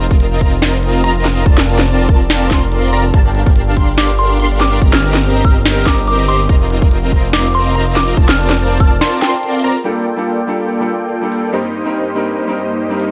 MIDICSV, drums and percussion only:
0, 0, Header, 1, 2, 480
1, 0, Start_track
1, 0, Key_signature, -2, "major"
1, 0, Tempo, 419580
1, 1669, Time_signature, 4, 2, 24, 8
1, 15000, End_track
2, 0, Start_track
2, 0, Title_t, "Drums"
2, 124, Note_on_c, 9, 36, 106
2, 231, Note_on_c, 9, 42, 84
2, 238, Note_off_c, 9, 36, 0
2, 345, Note_off_c, 9, 42, 0
2, 470, Note_on_c, 9, 36, 69
2, 471, Note_on_c, 9, 42, 72
2, 584, Note_off_c, 9, 36, 0
2, 585, Note_off_c, 9, 42, 0
2, 711, Note_on_c, 9, 38, 122
2, 711, Note_on_c, 9, 42, 80
2, 825, Note_off_c, 9, 38, 0
2, 825, Note_off_c, 9, 42, 0
2, 949, Note_on_c, 9, 42, 70
2, 1063, Note_off_c, 9, 42, 0
2, 1190, Note_on_c, 9, 42, 80
2, 1305, Note_off_c, 9, 42, 0
2, 1324, Note_on_c, 9, 42, 53
2, 1377, Note_off_c, 9, 42, 0
2, 1377, Note_on_c, 9, 42, 70
2, 1430, Note_on_c, 9, 40, 57
2, 1430, Note_on_c, 9, 46, 61
2, 1491, Note_off_c, 9, 42, 0
2, 1544, Note_off_c, 9, 40, 0
2, 1544, Note_off_c, 9, 46, 0
2, 1669, Note_on_c, 9, 42, 77
2, 1670, Note_on_c, 9, 36, 124
2, 1784, Note_off_c, 9, 36, 0
2, 1784, Note_off_c, 9, 42, 0
2, 1804, Note_on_c, 9, 40, 78
2, 1910, Note_on_c, 9, 42, 61
2, 1918, Note_off_c, 9, 40, 0
2, 2024, Note_off_c, 9, 42, 0
2, 2043, Note_on_c, 9, 40, 60
2, 2149, Note_on_c, 9, 42, 81
2, 2157, Note_off_c, 9, 40, 0
2, 2264, Note_off_c, 9, 42, 0
2, 2390, Note_on_c, 9, 36, 111
2, 2390, Note_on_c, 9, 42, 66
2, 2504, Note_off_c, 9, 36, 0
2, 2504, Note_off_c, 9, 42, 0
2, 2630, Note_on_c, 9, 38, 123
2, 2630, Note_on_c, 9, 42, 76
2, 2744, Note_off_c, 9, 38, 0
2, 2744, Note_off_c, 9, 42, 0
2, 2869, Note_on_c, 9, 40, 60
2, 2869, Note_on_c, 9, 42, 68
2, 2870, Note_on_c, 9, 36, 69
2, 2984, Note_off_c, 9, 36, 0
2, 2984, Note_off_c, 9, 40, 0
2, 2984, Note_off_c, 9, 42, 0
2, 3109, Note_on_c, 9, 42, 76
2, 3224, Note_off_c, 9, 42, 0
2, 3243, Note_on_c, 9, 42, 48
2, 3297, Note_off_c, 9, 42, 0
2, 3297, Note_on_c, 9, 42, 67
2, 3350, Note_on_c, 9, 46, 59
2, 3412, Note_off_c, 9, 42, 0
2, 3464, Note_off_c, 9, 46, 0
2, 3590, Note_on_c, 9, 36, 120
2, 3590, Note_on_c, 9, 42, 81
2, 3704, Note_off_c, 9, 36, 0
2, 3705, Note_off_c, 9, 42, 0
2, 3830, Note_on_c, 9, 42, 59
2, 3944, Note_off_c, 9, 42, 0
2, 3964, Note_on_c, 9, 36, 107
2, 4069, Note_on_c, 9, 42, 75
2, 4078, Note_off_c, 9, 36, 0
2, 4184, Note_off_c, 9, 42, 0
2, 4309, Note_on_c, 9, 36, 64
2, 4309, Note_on_c, 9, 42, 68
2, 4424, Note_off_c, 9, 36, 0
2, 4424, Note_off_c, 9, 42, 0
2, 4550, Note_on_c, 9, 38, 118
2, 4550, Note_on_c, 9, 42, 80
2, 4664, Note_off_c, 9, 38, 0
2, 4664, Note_off_c, 9, 42, 0
2, 4789, Note_on_c, 9, 42, 66
2, 4903, Note_off_c, 9, 42, 0
2, 5030, Note_on_c, 9, 42, 71
2, 5145, Note_off_c, 9, 42, 0
2, 5164, Note_on_c, 9, 42, 50
2, 5217, Note_off_c, 9, 42, 0
2, 5217, Note_on_c, 9, 42, 62
2, 5269, Note_on_c, 9, 40, 63
2, 5269, Note_on_c, 9, 46, 61
2, 5331, Note_off_c, 9, 42, 0
2, 5384, Note_off_c, 9, 40, 0
2, 5384, Note_off_c, 9, 46, 0
2, 5509, Note_on_c, 9, 36, 109
2, 5509, Note_on_c, 9, 42, 73
2, 5624, Note_off_c, 9, 36, 0
2, 5624, Note_off_c, 9, 42, 0
2, 5643, Note_on_c, 9, 40, 85
2, 5749, Note_on_c, 9, 42, 61
2, 5758, Note_off_c, 9, 40, 0
2, 5863, Note_off_c, 9, 42, 0
2, 5883, Note_on_c, 9, 40, 66
2, 5990, Note_on_c, 9, 42, 74
2, 5997, Note_off_c, 9, 40, 0
2, 6104, Note_off_c, 9, 42, 0
2, 6229, Note_on_c, 9, 36, 112
2, 6229, Note_on_c, 9, 42, 60
2, 6343, Note_off_c, 9, 36, 0
2, 6343, Note_off_c, 9, 42, 0
2, 6470, Note_on_c, 9, 38, 107
2, 6470, Note_on_c, 9, 42, 74
2, 6584, Note_off_c, 9, 38, 0
2, 6584, Note_off_c, 9, 42, 0
2, 6709, Note_on_c, 9, 36, 62
2, 6709, Note_on_c, 9, 40, 67
2, 6709, Note_on_c, 9, 42, 64
2, 6823, Note_off_c, 9, 36, 0
2, 6823, Note_off_c, 9, 40, 0
2, 6823, Note_off_c, 9, 42, 0
2, 6949, Note_on_c, 9, 42, 71
2, 7063, Note_off_c, 9, 42, 0
2, 7083, Note_on_c, 9, 42, 50
2, 7135, Note_off_c, 9, 42, 0
2, 7135, Note_on_c, 9, 42, 64
2, 7189, Note_on_c, 9, 46, 60
2, 7250, Note_off_c, 9, 42, 0
2, 7303, Note_off_c, 9, 46, 0
2, 7428, Note_on_c, 9, 42, 75
2, 7429, Note_on_c, 9, 36, 113
2, 7543, Note_off_c, 9, 36, 0
2, 7543, Note_off_c, 9, 42, 0
2, 7668, Note_on_c, 9, 42, 62
2, 7783, Note_off_c, 9, 42, 0
2, 7803, Note_on_c, 9, 36, 104
2, 7908, Note_on_c, 9, 42, 81
2, 7917, Note_off_c, 9, 36, 0
2, 8023, Note_off_c, 9, 42, 0
2, 8148, Note_on_c, 9, 36, 59
2, 8149, Note_on_c, 9, 42, 67
2, 8263, Note_off_c, 9, 36, 0
2, 8263, Note_off_c, 9, 42, 0
2, 8389, Note_on_c, 9, 38, 116
2, 8389, Note_on_c, 9, 42, 78
2, 8503, Note_off_c, 9, 38, 0
2, 8503, Note_off_c, 9, 42, 0
2, 8628, Note_on_c, 9, 42, 67
2, 8743, Note_off_c, 9, 42, 0
2, 8869, Note_on_c, 9, 42, 78
2, 8984, Note_off_c, 9, 42, 0
2, 9004, Note_on_c, 9, 42, 51
2, 9055, Note_off_c, 9, 42, 0
2, 9055, Note_on_c, 9, 42, 68
2, 9108, Note_on_c, 9, 40, 68
2, 9108, Note_on_c, 9, 46, 64
2, 9170, Note_off_c, 9, 42, 0
2, 9223, Note_off_c, 9, 40, 0
2, 9223, Note_off_c, 9, 46, 0
2, 9348, Note_on_c, 9, 42, 82
2, 9349, Note_on_c, 9, 36, 111
2, 9463, Note_off_c, 9, 42, 0
2, 9464, Note_off_c, 9, 36, 0
2, 9482, Note_on_c, 9, 40, 82
2, 9588, Note_on_c, 9, 42, 66
2, 9596, Note_off_c, 9, 40, 0
2, 9703, Note_off_c, 9, 42, 0
2, 9722, Note_on_c, 9, 40, 67
2, 9828, Note_on_c, 9, 42, 81
2, 9837, Note_off_c, 9, 40, 0
2, 9943, Note_off_c, 9, 42, 0
2, 10069, Note_on_c, 9, 42, 65
2, 10070, Note_on_c, 9, 36, 110
2, 10184, Note_off_c, 9, 36, 0
2, 10184, Note_off_c, 9, 42, 0
2, 10310, Note_on_c, 9, 38, 118
2, 10310, Note_on_c, 9, 42, 84
2, 10424, Note_off_c, 9, 38, 0
2, 10424, Note_off_c, 9, 42, 0
2, 10551, Note_on_c, 9, 40, 66
2, 10551, Note_on_c, 9, 42, 69
2, 10665, Note_off_c, 9, 40, 0
2, 10665, Note_off_c, 9, 42, 0
2, 10790, Note_on_c, 9, 42, 81
2, 10904, Note_off_c, 9, 42, 0
2, 10923, Note_on_c, 9, 42, 51
2, 10977, Note_off_c, 9, 42, 0
2, 10977, Note_on_c, 9, 42, 69
2, 11031, Note_on_c, 9, 46, 65
2, 11091, Note_off_c, 9, 42, 0
2, 11145, Note_off_c, 9, 46, 0
2, 12950, Note_on_c, 9, 46, 62
2, 13064, Note_off_c, 9, 46, 0
2, 14868, Note_on_c, 9, 46, 58
2, 14983, Note_off_c, 9, 46, 0
2, 15000, End_track
0, 0, End_of_file